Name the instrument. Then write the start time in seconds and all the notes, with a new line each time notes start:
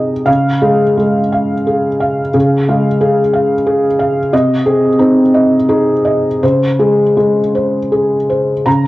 felt piano
Already playing: C3 C4 D#4 G#4 D#5
0.26 C#3 F5
0.61 G#3 G#4
0.97 G#3
1.32 F5
1.67 G#4
2.00 F5
2.34 C#3 G#4
2.68 G#3 F5
3.01 G#4
3.33 F5
3.67 G#4
3.99 F5
4.33 C3 D#5
4.66 C4 G#4
4.99 C4 D#4
5.34 D#5
5.69 D#4 G#4
6.05 D#5
6.43 C#3 C5
6.79 G#3 G#4
7.17 G#3
7.55 C5
7.92 G#4
8.29 C5
8.66 C#3 A#5